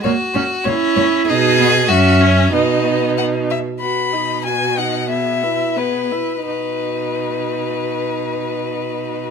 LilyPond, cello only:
\new Staff \with { instrumentName = "Cello" } { \clef bass \time 2/4 \key b \major \tempo 4 = 94 ais,8 ais,8 ais,8 ais,8 | b,4 fis,4 | b,4. r8 | b,2~ |
b,4. r8 | b,2~ | b,2 | }